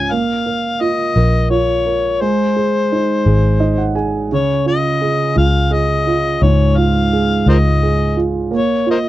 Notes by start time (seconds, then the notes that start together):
Already playing: C#2 G#2 C#4 F4 G#5
0.11 A#1 A#3 F5
0.46 A#4
0.81 F4 D#5
1.16 A#1 A#4
1.50 F4 C#5
1.86 A#4
2.21 G#1 G#3 C5
2.56 G#4
2.92 D#4
3.26 G#1 G#4
3.60 D#4 D#5
3.78 F#5
3.95 G#4 G#5
4.32 C#2 C#3 C#5
4.66 F4 D#5
5.01 G#4
5.36 C#2 F4 F5
5.71 G#4 D#5
6.07 F4
6.42 C#2 G#2 C#5
6.77 F4 F5
7.13 G#4
7.46 C#2 F4 A#4 C5 D#5
7.83 G#4
8.17 F4
8.51 A#1 A#3
8.56 C#5
8.87 F4
8.91 A#4 C5 D#5